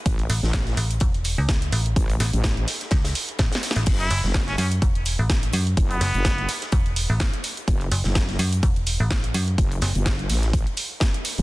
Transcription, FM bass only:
X:1
M:4/4
L:1/16
Q:"Swing 16ths" 1/4=126
K:F#m
V:1 name="FM bass" clef=bass
z2 A,,, z3 A,,,2 E,,,3 C,,3 A,,,2 | z2 A,,, z4 z C,,2 z2 A,,, z2 A,,, | z2 F,,, z3 F,,2 E,,,3 A,,,3 F,,2 | z2 F,,, z4 z E,,,3 A,,,2 z3 |
z2 F,,, z3 F,,2 E,,,3 A,,,3 F,,2 | z2 F,,, z12 z |]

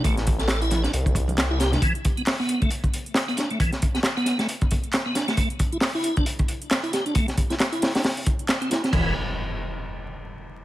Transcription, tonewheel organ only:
X:1
M:4/4
L:1/16
Q:"Swing 16ths" 1/4=135
K:Ador
V:1 name="Tonewheel organ"
A, z2 A2 E2 D z4 z E G D | E, z2 B, z B,2 A, z4 z B, D A, | E, z2 B, z B,2 A, z4 z B, D A, | A, z2 E z E2 D z4 z E G D |
A, z2 E z E2 D z4 z C E C | E,2 z12 z2 |]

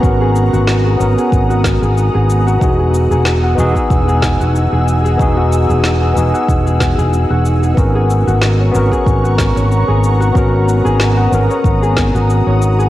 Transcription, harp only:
X:1
M:4/4
L:1/16
Q:"Swing 16ths" 1/4=93
K:G#m
V:1 name="Harp"
z G z F z G z G z F z G z G z F | z G z G z F z G z G z F z G z G | z F z G z G z F z G z G z F z G | z G z F z c z G z F z c z G z F |
z c z G z F z c z G z F z c z G |]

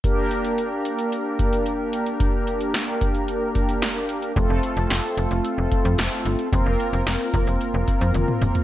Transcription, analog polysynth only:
X:1
M:4/4
L:1/8
Q:1/4=111
K:Gm
V:1 name="Analog polysynth"
[B,DGB]8- | [B,DGB]8 | [A,CFA]8 | [B,CFB]8 |]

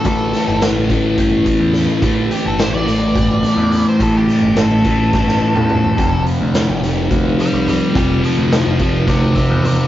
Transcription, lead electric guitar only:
X:1
M:7/8
L:1/16
Q:1/4=106
K:Am
V:1 name="Lead electric guitar"
A4 z8 z2 | z2 G A c d8 c | A G3 A8- A2- | A2 z8 [dg]2 [dg]2 |
[dg]2 [cf]2 [cf]2 [cf]2 [ce]2 [ce]2 [ce]2 |]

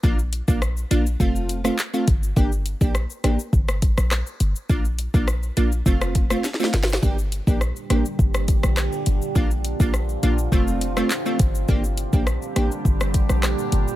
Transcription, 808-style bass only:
X:1
M:4/4
L:1/16
Q:1/4=103
K:Gm
V:1 name="808-style bass" clef=bass
B,,,3 B,,,3 B,,,2 F,,,4 z2 G,,,2 | G,,,3 B,,,2 z A,,, z G,,,3 B,,,2 z G,,, z | B,,,3 B,,,3 B,,,2 F,,,4 z2 G,,,2 | G,,,3 B,,,2 z A,,, z G,,,3 B,,,2 z G,,, z |
B,,,3 B,,,3 B,,,2 F,,,4 z2 G,,,2 | G,,,3 B,,,2 z A,,, z G,,,3 B,,,2 z G,,, z |]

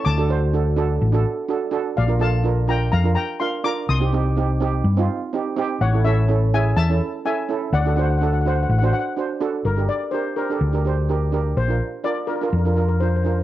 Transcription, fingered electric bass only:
X:1
M:4/4
L:1/8
Q:1/4=125
K:Bb
V:1 name="Fingered electric bass" clef=bass
D,,4 A,,, z3 | B,,,4 F,, z3 | C,,4 G,, z3 | A,,,4 =E,, z3 |
D,,4 A,,, z3 | G,,, z3 D,,4 | B,,, z3 F,,4 |]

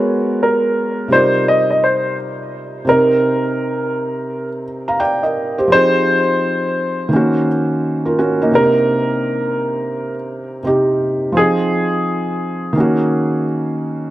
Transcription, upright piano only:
X:1
M:4/4
L:1/16
Q:"Swing 16ths" 1/4=85
K:Cm
V:1 name="Upright piano"
z2 B4 c2 e e c2 z4 | B8- B z6 z | c8- c z6 z | B8- B z6 z |
A12 z4 |]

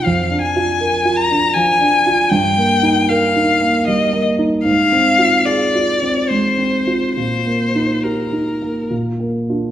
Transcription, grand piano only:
X:1
M:3/4
L:1/8
Q:1/4=76
K:Eb
V:1 name="Grand piano"
(3F,, D F (3B F D (3F, D F | (3G,, B, E (3B E B, (3G, B, E | (3A,, C F (3A F C (3A, C F | (3B,, B, E (3G E B, (3B,, B, [DF] |]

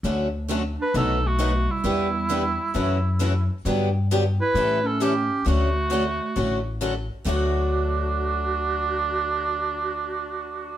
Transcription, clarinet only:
X:1
M:4/4
L:1/8
Q:"Swing" 1/4=133
K:D
V:1 name="Clarinet"
z3 D ^D A,2 G,- | G,4 z4 | z3 E2 C C2 | A,6 z2 |
F8- | F8 |]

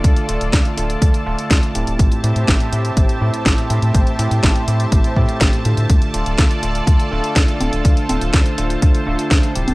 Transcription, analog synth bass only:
X:1
M:4/4
L:1/16
Q:1/4=123
K:Dm
V:1 name="Analog synth bass" clef=bass
D,, z D,,, D,,, D,, z D,,,2 D,, z D,,, z D,, z D,,, D,,, | A,,, z A,, A,, A,,, z A,,2 A,,, z A,, z A,,, z A,, A,, | A,,, z A,, A,, A,,, z A,,2 A,,, z A,, z A,,, z A,, A,, | D,, z D,,, D,,, D,, z D,,,2 D,, z D,,, z D,, z D,,, D,,, |
D,, z D,,, D,,, D,, z D,,,2 D,, z D,,, z D,, z D,,, D,,, |]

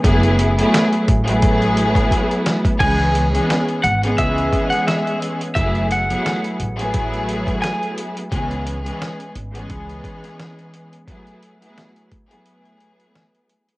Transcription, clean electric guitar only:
X:1
M:4/4
L:1/16
Q:"Swing 16ths" 1/4=87
K:F#dor
V:1 name="Clean electric guitar"
z16 | g4 z2 f z e3 f e2 z2 | e2 f3 z6 z g2 z2 | z16 |
z16 |]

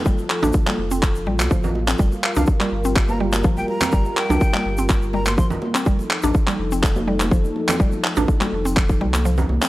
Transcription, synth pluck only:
X:1
M:4/4
L:1/16
Q:1/4=124
K:Fmix
V:1 name="Synth pluck" clef=bass
G, z2 D z G, z C z2 G, z F, z2 C | G, z2 D z G, z C z2 G, z F, z2 C | G, z2 D z G, z C z2 G, z F, z2 C | G, z2 D z G, z C z2 G, z F, z2 C |
G, z2 D z G, z C z2 G, z F, z2 C |]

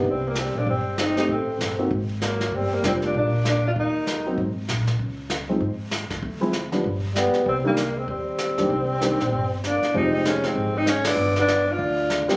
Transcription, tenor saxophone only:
X:1
M:4/4
L:1/8
Q:"Swing" 1/4=194
K:Cm
V:1 name="Tenor saxophone"
C B, C D C2 E E | C4 z2 B,2 | C B, C D D2 D F | E4 z4 |
z8 | z6 =B,2 | C B,2 C C4- | C6 D2 |
[K:Fm] E E D C2 E D =D- | =D D2 F4 z |]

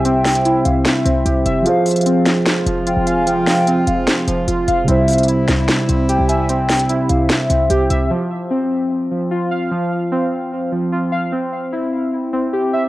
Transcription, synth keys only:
X:1
M:4/4
L:1/8
Q:1/4=149
K:Fm
V:1 name="Synth keys"
[CG=e]2 =E3 C G e | F,2 C3 F, F f | F,2 C3 F, F f | C2 =E3 C G =e |
C2 =E3 C G =e | F,2 C3 F, F f | F,2 C3 F, F f | C2 =E3 C G =e |]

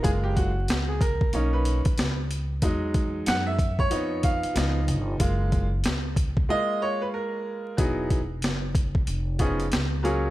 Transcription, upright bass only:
X:1
M:4/4
L:1/16
Q:"Swing 16ths" 1/4=93
K:F#
V:1 name="Upright bass" clef=bass
F,,,4 C,,4 B,,,3 z C,,4 | =E,,4 F,,4 ^E,,3 z C,,2 =G,,,2 | F,,,4 C,,4 z8 | =E,,,4 F,,,4 ^E,,,4 C,,4 |]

